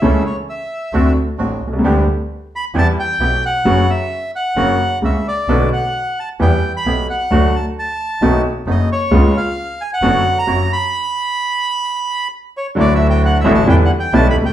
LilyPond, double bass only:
\new Staff \with { instrumentName = "Double bass" } { \clef bass \time 4/4 \key b \minor \tempo 4 = 132 cis,8 r4. d,8 r8 a,,8 c,8 | d,8 r4. e,8 r8 b,,8 r8 | fis,,8 r4. fis,,8 r8 cis,8 r8 | b,,8 r4. e,8 r8 b,,8 r8 |
d,8 r4. b,,8 r8 fis,,8 r8 | cis,8 r4. fis,,8 r8 fis,,8 r8 | r1 | \key d \major d,4. a,,8 e,8 r8 b,,8 d,8 | }